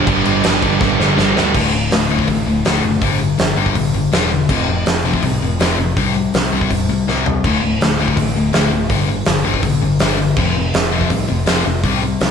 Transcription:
Already playing: overdriven electric guitar D5
0.07 picked electric bass G1, distorted electric guitar G2 D3 G3, kick, crash
0.25 picked electric bass G1, distorted electric guitar G2 D3 G3, crash
0.43 picked electric bass G1, distorted electric guitar G2 D3 G3, snare, crash
0.62 picked electric bass G1, distorted electric guitar G2 D3 G3, kick, crash
0.81 picked electric bass G1, distorted electric guitar G2 D3 G3, kick, snare
1.00 picked electric bass G1, distorted electric guitar G2 D3 G3, snare
1.17 picked electric bass G1, distorted electric guitar G2 D3 G3, snare
1.35 picked electric bass D2, distorted electric guitar G2 D3 G3, snare
1.54 picked electric bass D1, distorted electric guitar D2 A2 D3, kick, crash
1.73 picked electric bass D1, distorted electric guitar D2 A2
1.91 picked electric bass D1, distorted electric guitar D2 A2, snare, open hi-hat
2.09 distorted electric guitar D2 A2 D3
2.19 kick
2.27 picked electric bass A1, distorted electric guitar D2 A2, kick, open hi-hat
2.47 picked electric bass D1, distorted electric guitar D2 A2
2.65 picked electric bass D1, distorted electric guitar D2 A2 D3, snare, open hi-hat
2.83 picked electric bass F#1, distorted electric guitar D2 A2
3.01 picked electric bass G1, distorted electric guitar G2 D3 G3, kick, open hi-hat
3.20 distorted electric guitar G2 D3
3.38 picked electric bass G1, distorted electric guitar G2 D3, snare, open hi-hat
3.56 picked electric bass G1, distorted electric guitar G2 D3 G3
3.66 kick
3.75 picked electric bass B1, distorted electric guitar G2 D3, kick, open hi-hat
3.93 picked electric bass G1, distorted electric guitar G2 D3
4.12 picked electric bass E1, distorted electric guitar G2 D3 G3, snare, open hi-hat
4.31 distorted electric guitar G2 D3
4.49 picked electric bass F1, distorted electric guitar F2 C3 F3, kick, crash
4.68 picked electric bass F1, distorted electric guitar F2 C3
4.86 picked electric bass F1, distorted electric guitar F2 C3, snare, open hi-hat
5.04 distorted electric guitar F2 C3 F3
5.14 kick
5.23 picked electric bass C2, distorted electric guitar F2 C3, kick, open hi-hat
5.41 picked electric bass F1, distorted electric guitar F2 C3
5.60 picked electric bass F1, distorted electric guitar F2 C3 F3, snare, open hi-hat
5.78 picked electric bass F1, distorted electric guitar F2 C3
5.97 picked electric bass C2, distorted electric guitar C3 G3 C4, kick, open hi-hat
6.16 distorted electric guitar C3 G3
6.34 picked electric bass C2, distorted electric guitar C3 G3, snare, open hi-hat
6.52 picked electric bass C2, distorted electric guitar C3 G3 C4
6.61 kick
6.71 picked electric bass E1, distorted electric guitar C3 G3, kick, open hi-hat
6.89 picked electric bass C2, distorted electric guitar C3 G3
7.07 picked electric bass C2, distorted electric guitar C3 G3 C4, snare
7.26 distorted electric guitar C3 G3, floor tom
7.44 picked electric bass D1, distorted electric guitar D2 A2 D3, kick, crash
7.62 picked electric bass D1, distorted electric guitar D2 A2
7.81 picked electric bass D1, distorted electric guitar D2 A2, snare, open hi-hat
7.99 distorted electric guitar D2 A2 D3
8.08 kick
8.16 picked electric bass A1, distorted electric guitar D2 A2, kick, open hi-hat
8.35 picked electric bass D1, distorted electric guitar D2 A2
8.53 picked electric bass D1, distorted electric guitar D2 A2 D3, snare, open hi-hat
8.72 picked electric bass D1, distorted electric guitar D2 A2
8.89 picked electric bass G1, distorted electric guitar G2 D3 G3, kick, open hi-hat
9.09 distorted electric guitar G2 D3
9.25 picked electric bass G1, distorted electric guitar G2 D3, snare, open hi-hat
9.44 picked electric bass G1, distorted electric guitar G2 D3 G3
9.54 kick
9.63 picked electric bass B1, distorted electric guitar G2 D3, kick, open hi-hat
9.82 picked electric bass G1, distorted electric guitar G2 D3
9.99 picked electric bass G1, distorted electric guitar G2 D3 G3, snare, open hi-hat
10.18 distorted electric guitar G2 D3
10.36 picked electric bass F1, distorted electric guitar F2 C3 F3, kick, crash
10.56 picked electric bass F1, distorted electric guitar F2 C3
10.74 picked electric bass F1, distorted electric guitar F2 C3, snare, open hi-hat
10.92 distorted electric guitar F2 C3 F3
11.01 kick
11.10 picked electric bass C2, distorted electric guitar F2 C3, kick, open hi-hat
11.28 picked electric bass F1, distorted electric guitar F2 C3
11.46 picked electric bass F1, distorted electric guitar F2 C3 F3, snare, open hi-hat
11.66 picked electric bass F1, distorted electric guitar F2 C3
11.83 picked electric bass C2, distorted electric guitar C3 G3 C4, kick, open hi-hat
12.03 distorted electric guitar C3 G3
12.20 picked electric bass C2, distorted electric guitar C3 G3, snare, open hi-hat

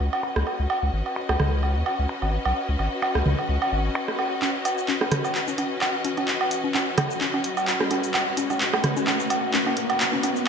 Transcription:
Already playing: string section C#4 F#4 B4 D#5
0.00 sub bass C#2
0.13 low woodblock
0.23 finger snap
0.36 sub bass C#2, cross-stick
0.47 low woodblock
0.59 sub bass C#2
0.70 low woodblock
0.83 sub bass C#2
0.93 sub bass G#1
1.06 low woodblock
1.16 finger snap
1.29 sub bass C#2, cross-stick, low woodblock
1.40 sub bass C#2, cross-stick, mid tom
1.63 low woodblock
1.76 sub bass D#2
1.86 low woodblock
1.99 sub bass C#2
2.09 finger snap
2.22 sub bass G#1, low woodblock
2.45 sub bass B1, low woodblock
2.69 sub bass C#2
2.79 sub bass G#1, low woodblock
3.02 finger snap, low woodblock
3.15 sub bass C#2, cross-stick
3.26 sub bass C#2, mid tom
3.39 low woodblock
3.49 sub bass C#2
3.62 low woodblock
3.72 sub bass G#1
3.95 finger snap, low woodblock
4.08 cross-stick
4.19 low woodblock
4.42 synth arpeggio sound C#4, clap, riser, low woodblock
4.65 closed hi-hat, cabasa, low woodblock
4.78 cabasa
4.88 synth arpeggio sound C#4, clap
5.01 synth arpeggio sound C#4, cross-stick, low woodblock
5.12 cross-stick, closed hi-hat, mid tom
5.24 cabasa, low woodblock
5.35 clap
5.48 synth arpeggio sound C#4, cabasa
5.58 synth arpeggio sound C#4, closed hi-hat, low woodblock
5.81 clap, low woodblock
6.04 synth arpeggio sound C#4, closed hi-hat
6.17 synth arpeggio sound C#4, closed hi-hat, low woodblock
6.28 clap
6.41 low woodblock
6.51 closed hi-hat, cabasa
6.64 synth arpeggio sound C#4
6.74 synth arpeggio sound C#4, clap, low woodblock
6.98 cross-stick, closed hi-hat, mid tom, low woodblock
7.10 cabasa
7.21 synth arpeggio sound C#4, clap
7.34 synth arpeggio sound C#4, low woodblock
7.44 closed hi-hat
7.57 cabasa, low woodblock
7.67 clap
7.80 synth arpeggio sound C#4, cross-stick
7.91 synth arpeggio sound C#4, closed hi-hat, low woodblock
8.04 closed hi-hat, cabasa
8.14 clap, low woodblock
8.37 synth arpeggio sound C#4, closed hi-hat, cabasa
8.50 synth arpeggio sound C#4, cabasa, low woodblock
8.60 clap
8.73 cross-stick, low woodblock
8.84 cross-stick, closed hi-hat, mid tom
8.97 synth arpeggio sound C#4, cabasa
9.07 synth arpeggio sound C#4, clap, low woodblock
9.20 cabasa
9.30 closed hi-hat, low woodblock
9.54 synth arpeggio sound C#4, clap
9.66 synth arpeggio sound C#4, low woodblock
9.77 closed hi-hat
9.90 closed hi-hat, low woodblock
10.00 clap
10.13 synth arpeggio sound C#4
10.23 synth arpeggio sound C#4, closed hi-hat, cabasa, low woodblock
10.36 cabasa

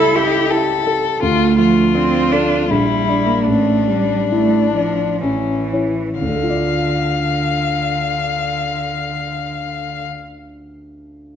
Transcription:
Already playing: grand piano C#2 G3 E4, violin E4, cello A4
0.16 cello E4, violin G4, grand piano A4
0.50 grand piano G4, violin A4
0.86 grand piano A4
1.22 grand piano D2, cello A3, violin F4
1.58 grand piano F3, violin F4
1.95 cello C4, grand piano D4
2.32 cello D4, grand piano A4
2.70 grand piano A#1, cello G3, violin E4
3.08 grand piano D4 D5
3.26 cello A#3
3.46 grand piano A1, cello A3, violin D4
3.88 grand piano G3, cello G3
4.31 cello A3, grand piano E4
4.75 cello F3, grand piano D5
5.21 grand piano A1, cello E3, violin C#4
5.73 grand piano E4 C#5
6.20 grand piano D2, cello D3, violin F5
6.29 grand piano D3
6.36 grand piano A3
6.43 grand piano F4
6.50 grand piano D5
6.57 grand piano F5

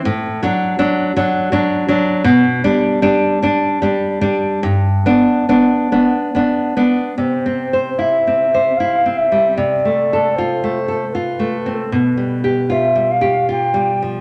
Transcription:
0.05 nylon-string guitar A2
0.43 nylon-string guitar F#3 D4
0.79 nylon-string guitar F#3 D4
1.16 nylon-string guitar F#3 D4
1.52 nylon-string guitar F#3 D4
1.88 nylon-string guitar F#3 D4
2.24 nylon-string guitar B2
2.64 nylon-string guitar G3 D4
3.02 nylon-string guitar G3 D4
3.42 nylon-string guitar G3 D4
3.82 nylon-string guitar G3 D4
4.21 nylon-string guitar G3 D4
4.63 nylon-string guitar G2
5.06 nylon-string guitar B3 D4
5.49 nylon-string guitar B3 D4
5.92 nylon-string guitar B3 D4
6.35 nylon-string guitar B3 D4
6.77 nylon-string guitar B3 D4
7.17 nylon-string guitar C3, recorder C5 D5
7.46 nylon-string guitar C4
7.73 nylon-string guitar C5
7.99 nylon-string guitar E4, recorder E5 F5
8.27 nylon-string guitar C4
8.54 nylon-string guitar C5
8.77 nylon-string guitar E4, recorder F5
9.06 nylon-string guitar C4
9.17 recorder E5
9.32 nylon-string guitar G3
9.57 nylon-string guitar C3, recorder D5
9.85 nylon-string guitar A3
10.13 nylon-string guitar A4
10.36 nylon-string guitar F4, recorder C5
10.64 nylon-string guitar A3
10.88 nylon-string guitar A4
11.13 nylon-string guitar F4, recorder B4
11.39 nylon-string guitar A3
11.66 nylon-string guitar C4
11.75 recorder A4
11.92 nylon-string guitar B2, recorder B4
12.17 nylon-string guitar G3
12.44 nylon-string guitar G4
12.70 nylon-string guitar F4, recorder E5
12.95 nylon-string guitar G3
13.11 recorder F5
13.21 nylon-string guitar G4
13.49 nylon-string guitar F4, recorder G5
13.74 nylon-string guitar G3
14.02 nylon-string guitar F3

